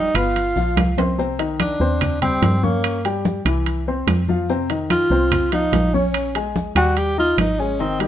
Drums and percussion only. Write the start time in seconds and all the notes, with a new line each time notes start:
0.15 high conga, high timbale, claves, maracas
0.36 high conga, high timbale, maracas
0.56 high conga, maracas
0.77 high conga, high timbale, low timbale, claves, maracas
0.98 high conga, high timbale, maracas
1.19 high conga, maracas
1.39 high conga, high timbale
1.60 high conga, high timbale, low timbale, claves, maracas
1.81 high conga, maracas
2.01 high conga, low conga, high timbale, claves, maracas
2.22 high conga, low conga, high timbale
2.42 high conga, high timbale, low timbale, maracas
2.63 high conga, maracas
2.84 high conga, high timbale, claves, maracas
3.05 high conga, high timbale, maracas
3.25 high conga, low timbale, maracas
3.46 high conga, high timbale, claves, maracas
3.66 high conga, high timbale, maracas
3.87 high conga
4.08 high conga, high timbale, low timbale, claves, maracas
4.28 high conga, maracas
4.49 high conga, maracas
4.70 high conga, high timbale
4.90 high conga, high timbale, low timbale, claves, maracas
5.11 high conga, maracas
5.32 high conga, low conga, high timbale, claves, maracas
5.52 high conga, high timbale, maracas
5.73 high conga, high timbale, low timbale, maracas
5.94 high conga, maracas
6.14 high conga, high timbale, claves, maracas
6.35 high conga, high timbale
6.56 high conga, low timbale, maracas
6.76 high conga, high timbale, claves, maracas
6.97 high conga, high timbale, maracas
7.18 high conga
7.38 high conga, high timbale, low timbale, claves, maracas
7.59 maracas
7.80 high conga, maracas
8.00 high conga, high timbale